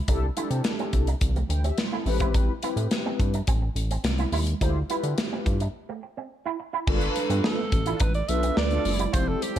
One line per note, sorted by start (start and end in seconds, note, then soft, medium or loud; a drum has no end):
0.08 0.30 C2 loud
0.08 0.18 D4 medium
0.08 0.26 D4 loud
0.08 0.26 E4 medium
0.08 0.26 G4 medium
0.08 0.26 A4 loud
0.08 kick medium
0.08 closed hi-hat loud
0.08 muted conga medium
0.37 1.06 D4 medium
0.37 0.47 E4 medium
0.37 1.07 E4 medium
0.37 1.07 G4 medium
0.37 1.07 A4 medium
0.37 closed hi-hat medium
0.37 muted conga soft
0.51 0.62 C3 loud
0.51 muted clean electric guitar stroke soft
0.51 closed hi-hat soft
0.64 snare loud
0.64 closed hi-hat medium
0.64 high conga medium
0.79 0.89 C4 medium
0.79 closed hi-hat soft
0.93 1.15 C2 medium
0.93 muted clean electric guitar stroke soft
0.93 kick medium
0.93 closed hi-hat medium
1.07 1.18 D4 medium
1.07 closed hi-hat medium
1.21 1.43 C2 medium
1.21 kick loud
1.21 closed hi-hat loud
1.21 muted conga soft
1.21 low conga medium
1.36 1.46 A3 medium
1.36 closed hi-hat soft
1.49 1.71 D2 medium
1.49 1.64 B4 medium
1.49 1.63 G5 medium
1.49 muted clean electric guitar stroke soft
1.49 closed hi-hat medium
1.64 1.74 C4 medium
1.64 1.78 G4 medium
1.64 1.78 E5 medium
1.64 closed hi-hat soft
1.78 1.92 E4 medium
1.78 1.92 C5 medium
1.78 snare loud
1.78 closed hi-hat medium
1.78 high conga medium
1.92 2.06 C4 medium
1.92 2.02 E4 medium
1.92 2.20 A4 medium
2.06 2.50 A1 loud
2.06 2.52 C4 medium
2.06 2.52 E4 medium
2.06 2.52 G4 medium
2.06 2.52 B4 loud
2.06 muted clean electric guitar stroke soft
2.06 open hi-hat medium
2.06 high conga medium
2.20 2.31 E4 medium
2.20 kick medium
2.20 closed hi-hat medium
2.34 2.45 D4 medium
2.34 kick loud
2.34 closed hi-hat medium
2.34 muted conga medium
2.63 3.33 C4 medium
2.63 2.73 E4 medium
2.63 3.33 E4 medium
2.63 3.33 G4 medium
2.63 3.33 B4 medium
2.63 closed hi-hat medium
2.63 muted conga soft
2.76 2.88 A2 medium
2.76 muted clean electric guitar stroke medium
2.76 closed hi-hat soft
2.91 snare loud
2.91 closed hi-hat medium
2.91 high conga medium
3.06 3.16 C4 medium
3.19 3.41 G2 medium
3.19 muted clean electric guitar stroke soft
3.19 kick loud
3.19 closed hi-hat medium
3.34 3.44 D4 medium
3.34 closed hi-hat medium
3.47 3.70 A1 medium
3.47 3.58 C4 medium
3.47 kick loud
3.47 closed hi-hat loud
3.47 muted conga soft
3.62 muted clean electric guitar stroke soft
3.75 3.98 A1 medium
3.75 closed hi-hat medium
3.91 4.01 C4 medium
3.91 closed hi-hat soft
4.04 4.26 C2 loud
4.04 muted clean electric guitar stroke soft
4.04 snare loud
4.04 closed hi-hat medium
4.04 high conga medium
4.18 4.29 E4 medium
4.18 closed hi-hat soft
4.32 4.54 D#2 loud
4.32 4.43 E4 medium
4.32 open hi-hat medium
4.32 high conga medium
4.47 closed hi-hat medium
4.60 4.83 D2 loud
4.60 4.71 D4 medium
4.60 4.78 E4 medium
4.60 4.78 F4 medium
4.60 4.79 G4 medium
4.60 4.79 C5 loud
4.60 kick loud
4.60 closed hi-hat loud
4.60 muted conga medium
4.89 5.59 E4 medium
4.89 5.00 E4 medium
4.89 5.59 F4 medium
4.89 5.59 G4 medium
4.89 5.59 B4 medium
4.89 closed hi-hat medium
4.89 muted conga soft
5.03 5.14 D3 medium
5.03 muted clean electric guitar stroke soft
5.03 closed hi-hat medium
5.18 snare loud
5.18 closed hi-hat medium
5.18 high conga medium
5.32 5.42 C4 medium
5.46 5.68 G2 medium
5.46 muted clean electric guitar stroke soft
5.46 kick medium
5.46 closed hi-hat medium
5.46 muted conga soft
5.60 5.71 D4 medium
5.60 closed hi-hat medium
5.89 5.99 A3 medium
6.03 muted clean electric guitar stroke soft
6.17 6.27 C4 medium
6.46 6.55 E4 medium
6.60 muted clean electric guitar stroke soft
6.73 6.83 E4 medium
6.87 7.09 G1 loud
6.87 6.97 G3 medium
6.87 7.57 D4 loud
6.87 7.57 F4 medium
6.87 7.58 A4 medium
6.87 6.94 A#4 medium
6.87 kick loud
6.87 crash medium
6.87 muted conga medium
6.95 7.61 B4 loud
7.01 closed hi-hat soft
7.16 muted clean electric guitar stroke soft
7.16 closed hi-hat medium
7.16 muted conga soft
7.30 7.41 G2 loud
7.30 7.40 B3 medium
7.30 closed hi-hat soft
7.44 7.54 D4 medium
7.44 8.02 A4 loud
7.44 snare loud
7.44 high conga medium
7.58 muted clean electric guitar stroke soft
7.72 7.94 A1 loud
7.72 kick medium
7.72 closed hi-hat medium
7.72 muted conga soft
7.72 low conga medium
7.86 7.98 D4 medium
7.86 7.96 E4 medium
7.86 7.98 F4 medium
7.86 7.98 A4 loud
7.86 closed hi-hat soft
8.00 8.22 A1 loud
8.00 8.11 D4 loud
8.00 8.14 B4 loud
8.00 kick loud
8.00 closed hi-hat loud
8.00 muted conga soft
8.14 8.30 D5 loud
8.14 closed hi-hat soft
8.28 8.51 B1 medium
8.28 8.81 D4 medium
8.28 8.41 D4 medium
8.28 8.81 F4 medium
8.28 8.41 F4 medium
8.28 8.41 A4 medium
8.28 8.81 A4 medium
8.28 8.81 B4 medium
8.28 8.57 E5 medium
8.28 muted clean electric guitar stroke soft
8.28 closed hi-hat medium
8.43 8.53 B3 medium
8.43 closed hi-hat soft
8.57 8.79 D2 medium
8.57 8.67 D4 medium
8.57 9.15 D5 loud
8.57 snare loud
8.57 high conga medium
8.71 9.07 D4 loud
8.71 9.07 F4 loud
8.71 9.07 A4 loud
8.71 closed hi-hat soft
8.85 9.07 F#1 loud
8.85 muted clean electric guitar stroke soft
8.85 open hi-hat medium
8.85 high conga medium
8.99 9.09 E4 medium
8.99 closed hi-hat medium
8.99 high conga medium
9.13 9.36 F1 loud
9.13 9.59 C4 medium
9.13 9.59 E4 medium
9.13 9.23 F4 loud
9.13 9.59 G4 medium
9.13 9.59 A4 medium
9.13 9.30 C5 loud
9.13 kick loud
9.13 closed hi-hat medium
9.13 muted conga medium
9.28 9.44 A4 loud
9.42 9.59 G4 loud
9.42 muted clean electric guitar stroke soft
9.42 closed hi-hat medium
9.42 muted conga soft